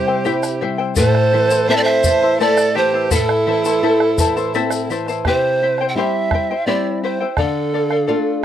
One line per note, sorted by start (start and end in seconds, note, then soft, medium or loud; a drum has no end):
0.00 0.93 C3 medium
0.00 0.24 G3 medium
0.00 0.60 G4 medium
0.00 0.61 C5 medium
0.08 0.24 E4 soft
0.08 0.24 C5 soft
0.08 0.25 G5 soft
0.25 0.60 E4 medium
0.25 0.61 G4 medium
0.25 0.61 C5 medium
0.25 0.60 E5 medium
0.25 0.61 G5 medium
0.25 bombo rim soft
0.25 shaker soft
0.43 bombo rim medium
0.43 shaker medium
0.61 0.96 G3 soft
0.61 0.79 E4 medium
0.61 0.78 C5 medium
0.61 0.79 E5 medium
0.61 0.77 G5 medium
0.78 0.96 E4 soft
0.78 0.96 C5 soft
0.78 0.96 G5 soft
0.96 3.08 A2 medium
0.96 1.32 E4 medium
0.96 1.69 A4 medium
0.96 1.32 A4 medium
0.96 1.33 C5 medium
0.96 1.71 C5 loud
0.96 1.32 E5 medium
0.96 1.33 A5 medium
0.96 bombo low medium
0.96 shaker medium
1.15 bombo rim medium
1.33 1.68 E3 medium
1.33 1.51 E4 medium
1.33 1.50 C5 medium
1.33 1.51 E5 medium
1.33 1.50 A5 medium
1.50 1.69 E4 soft
1.50 1.69 C5 medium
1.50 1.69 A5 medium
1.50 shaker medium
1.68 2.03 C4 medium
1.68 2.04 E4 medium
1.68 2.05 A4 medium
1.68 1.75 C5 medium
1.68 2.05 C5 medium
1.68 1.78 E5 loud
1.68 2.04 E5 medium
1.68 2.05 A5 medium
1.73 1.83 A4 medium
1.73 1.85 D5 medium
1.82 2.40 C5 medium
1.82 2.41 E5 loud
1.86 bombo rim medium
2.04 2.39 E3 medium
2.04 2.22 E4 medium
2.04 2.22 C5 medium
2.04 2.22 E5 medium
2.04 2.21 A5 medium
2.04 bombo low medium
2.04 shaker medium
2.22 2.40 E4 soft
2.22 2.40 C5 soft
2.22 2.40 A5 medium
2.40 2.75 A3 medium
2.40 2.75 E4 medium
2.40 2.76 A4 medium
2.40 2.75 C5 medium
2.40 2.79 D5 loud
2.40 2.74 E5 medium
2.40 2.75 A5 medium
2.40 bombo rim soft
2.40 shaker soft
2.57 bombo rim medium
2.57 shaker medium
2.75 3.10 E3 soft
2.75 2.94 E4 medium
2.75 3.13 G4 medium
2.75 2.94 C5 medium
2.75 3.15 C5 medium
2.75 2.93 E5 medium
2.75 2.93 A5 medium
2.75 bombo rim soft
2.94 3.10 E4 soft
2.94 3.11 C5 soft
2.94 3.11 A5 soft
3.11 5.21 A2 medium
3.11 4.89 E4 medium
3.11 3.46 E4 medium
3.11 3.47 A4 medium
3.11 4.90 A4 loud
3.11 3.47 C5 medium
3.11 3.46 E5 medium
3.11 3.47 A5 medium
3.11 bombo low medium
3.11 shaker medium
3.29 bombo rim medium
3.47 3.82 E3 medium
3.47 3.65 E4 medium
3.47 3.65 C5 medium
3.47 3.65 E5 medium
3.47 3.65 A5 medium
3.65 3.82 E4 soft
3.65 3.83 C5 medium
3.65 3.83 A5 soft
3.65 bombo rim soft
3.65 shaker medium
3.83 4.17 E4 medium
3.83 4.18 E4 medium
3.83 4.18 A4 medium
3.83 4.19 C5 medium
3.83 4.17 E5 medium
3.83 4.19 A5 medium
4.00 bombo rim medium
4.18 4.53 E3 medium
4.18 4.36 E4 medium
4.18 4.36 C5 medium
4.18 4.36 E5 medium
4.18 4.35 A5 medium
4.18 bombo rim soft
4.18 bombo low medium
4.18 shaker medium
4.36 4.54 E4 soft
4.36 4.54 C5 medium
4.36 4.54 A5 medium
4.36 bombo rim soft
4.36 shaker soft
4.54 4.89 C4 medium
4.54 4.90 E4 medium
4.54 4.90 A4 medium
4.54 4.90 C5 medium
4.54 4.89 E5 medium
4.54 4.90 A5 medium
4.54 shaker soft
4.70 bombo rim medium
4.70 shaker medium
4.90 5.24 E3 soft
4.90 5.08 E4 medium
4.90 5.08 C5 medium
4.90 5.07 E5 medium
4.90 5.07 A5 medium
4.90 shaker soft
5.06 5.26 E4 soft
5.06 5.26 C5 soft
5.06 5.25 A5 soft
5.06 bombo rim soft
5.06 shaker soft
5.25 5.94 C3 medium
5.25 5.62 E4 medium
5.25 5.61 G4 medium
5.25 5.86 C5 loud
5.25 5.62 C5 medium
5.25 5.61 E5 medium
5.25 5.62 G5 medium
5.25 bombo rim medium
5.25 bombo low medium
5.63 5.79 E4 medium
5.63 5.79 C5 medium
5.63 5.79 E5 medium
5.63 5.80 G5 medium
5.78 5.97 E4 soft
5.78 5.97 C5 soft
5.78 5.97 G5 medium
5.78 bombo rim soft
5.89 5.98 G5 medium
5.95 6.52 G3 soft
5.95 6.53 C4 soft
5.95 6.53 E4 medium
5.95 6.32 E4 medium
5.95 6.32 G4 medium
5.95 6.33 C5 medium
5.95 6.68 E5 medium
5.95 6.32 E5 medium
5.95 6.33 G5 medium
6.31 6.50 E4 medium
6.31 6.50 C5 medium
6.31 6.50 E5 medium
6.31 6.49 G5 medium
6.31 bombo rim medium
6.31 bombo low medium
6.51 6.67 E4 soft
6.51 6.67 C5 soft
6.51 6.67 G5 soft
6.66 7.23 G3 soft
6.66 7.23 C4 soft
6.66 7.23 E4 soft
6.66 7.03 E4 medium
6.66 7.02 G4 medium
6.66 7.03 C5 medium
6.66 7.02 D5 medium
6.66 7.02 E5 medium
6.66 7.03 G5 medium
7.02 7.20 E4 medium
7.02 7.36 C5 medium
7.02 7.20 C5 medium
7.02 7.20 E5 medium
7.02 7.19 G5 medium
7.02 bombo rim soft
7.21 7.38 E4 soft
7.21 7.38 C5 soft
7.21 7.38 G5 soft
7.37 8.06 D3 medium
7.37 7.72 A4 medium
7.37 8.45 A4 medium
7.37 7.73 D5 medium
7.37 7.74 F5 medium
7.37 bombo rim medium
7.37 bombo low medium
7.73 7.91 A4 medium
7.73 7.91 D5 medium
7.73 7.89 F5 medium
7.90 8.07 D5 soft
7.90 8.07 F5 medium
7.90 bombo rim soft
8.07 8.45 A3 soft
8.07 8.45 D4 soft
8.07 8.45 F4 medium
8.07 8.42 A4 medium
8.07 8.43 D5 medium
8.07 8.43 F5 medium